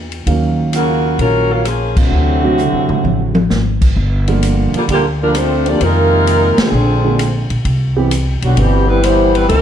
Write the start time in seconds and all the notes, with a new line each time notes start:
Already playing: E2
0.12 ride
0.27 D#2 D#3 F#3 A#3 C#4 F5, kick, ride
0.73 C#3 A#3 F4 F#4, hi-hat pedal, ride
1.19 A#1 F#3 C#4 F4 A#4, kick, ride
1.51 F#3 A#3 C#4 F4
1.65 F3 A#3 C#4 G#4, cross-stick, hi-hat pedal, ride
1.95 A2 C3 D3 F#3 A3 C4 F#4, kick, crash
2.11 D2
2.43 D3 F#3 A3 C4 F#4
2.58 hi-hat pedal, mid tom
2.73 F#2
2.88 C#2, mid tom
3.04 A1, high tom
3.35 high tom
3.50 G#1, snare, hi-hat pedal
3.82 kick, crash
3.96 G1, kick
4.28 D3 F3 G3 A#3 F4, ride
4.43 hi-hat pedal, ride
4.74 A#2 D3 F3 G3 A#3 D4 F4, muted upright bass stroke, ride
4.88 D2 A#2 D3 F3 G3 A#3 D4 G4, kick, ride
5.22 D3 F3 G3 A#3 D4 F4 A#4
5.34 A3 C4 D4 F4 C5, cross-stick, hi-hat pedal, ride
5.66 F3 A#3 D4 F4 G4 D5, ride
5.80 F2 C3 D#3 G#3 A#3 D#4 F4 A#4, kick, ride
6.27 hi-hat pedal, ride
6.57 D3 F3 G#3 C4 D4 G#4, muted upright bass stroke, snare, ride
6.72 A#1
7.04 D3 G#3 A#3 C4 F4
7.19 cross-stick, hi-hat pedal, ride
7.50 A#1, ride
7.65 C2, kick, ride
7.96 E3 G3 B3 C4 G4
8.11 hi-hat pedal, ride
8.42 B1 D3 F#3 G3 B3 F#4, ride
8.57 G1 B2 E3 G3 B3 C4 G4, kick, ride
8.87 E3 G3 B3 C4 E4 B4
9.01 E3 G3 B3 C4 E4 C5, cross-stick, hi-hat pedal, ride
9.33 E3 G3 B3 C4 E4 B4, ride
9.48 C#2 B2 E3 G#3 A#3 C#4 E4 A#4, kick, ride